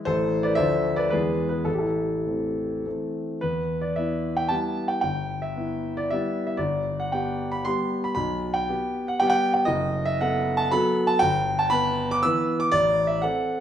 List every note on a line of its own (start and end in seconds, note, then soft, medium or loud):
0.05 0.55 A1 medium
0.05 0.53 E3 soft
0.05 0.53 A3 medium
0.05 0.53 E4 soft
0.05 0.41 A4 medium
0.05 0.43 C5 loud
0.43 0.56 B4 medium
0.43 0.57 D5 medium
0.55 1.09 D2 medium
0.55 1.07 F3 soft
0.55 1.07 A3 soft
0.55 1.07 D4 soft
0.55 0.95 C5 medium
0.55 0.97 E5 loud
0.96 1.09 B4 medium
0.96 1.10 D5 medium
1.10 1.64 E2 medium
1.10 1.62 E3 soft
1.10 1.62 G#3 soft
1.10 1.63 B3 soft
1.10 1.49 G#4 medium
1.10 1.47 B4 medium
1.49 1.64 G#4 medium
1.49 1.64 B4 medium
1.65 2.23 A1 medium
1.65 1.72 A4 medium
1.74 1.81 G4 medium
1.78 2.81 E4 soft
1.78 2.85 A4 medium
2.26 2.82 E3 soft
2.26 2.82 A3 soft
2.26 2.83 C4 soft
2.86 3.38 E3 soft
2.86 3.38 A3 soft
2.86 3.38 C4 soft
3.41 3.96 E2 medium
3.41 3.82 B4 medium
3.81 3.96 D5 medium
3.96 4.48 B3 soft
3.96 4.48 E4 soft
3.96 4.38 E5 medium
4.37 4.51 G5 medium
4.49 4.99 G3 soft
4.49 4.99 B3 medium
4.49 5.00 E4 medium
4.49 4.89 A5 medium
4.88 5.00 G5 medium
5.01 5.55 G1 medium
5.01 5.42 G5 medium
5.42 5.97 E5 medium
5.56 6.07 B3 soft
5.56 6.07 E4 soft
5.97 6.11 D5 medium
6.10 6.57 G3 soft
6.10 6.57 B3 medium
6.10 6.57 E4 medium
6.10 6.45 E5 medium
6.47 6.60 E5 medium
6.57 7.10 G1 medium
6.57 6.97 D5 medium
7.00 7.13 F#5 medium
7.12 7.61 B3 soft
7.12 7.62 G4 soft
7.12 7.52 G5 medium
7.52 7.65 B5 medium
7.65 8.13 G3 medium
7.65 8.13 B3 medium
7.65 8.13 G4 medium
7.65 8.03 C6 medium
8.04 8.13 B5 medium
8.15 8.67 B1 medium
8.15 8.54 B5 loud
8.54 9.06 G5 medium
8.69 9.16 B3 soft
8.69 9.16 G4 medium
9.08 9.20 F#5 medium
9.20 9.65 G3 medium
9.20 9.66 B3 medium
9.20 9.66 G4 medium
9.20 9.26 G5 loud
9.27 9.33 F#5 medium
9.27 9.52 G5 loud
9.54 9.67 G5 medium
9.65 10.17 F#1 medium
9.65 10.05 D#5 loud
10.05 10.19 E5 medium
10.21 10.67 B3 medium
10.21 10.67 A4 medium
10.21 10.59 F#5 loud
10.57 10.70 A5 loud
10.71 11.16 F#3 medium
10.71 11.17 B3 medium
10.71 11.17 A4 medium
10.71 11.08 B5 loud
11.07 11.20 A5 loud
11.19 11.70 G1 medium
11.19 11.57 G5 loud
11.59 11.71 A5 medium
11.70 12.18 B3 medium
11.70 12.18 B4 medium
11.70 12.09 B5 loud
12.11 12.23 D6 loud
12.23 12.67 E3 medium
12.23 12.67 B3 medium
12.23 12.67 B4 medium
12.23 12.58 E6 loud
12.60 12.70 D6 loud
12.72 13.21 A1 medium
12.72 13.08 D5 loud
13.07 13.21 E5 medium
13.22 13.60 C4 soft
13.22 13.60 A4 medium
13.22 13.60 F#5 loud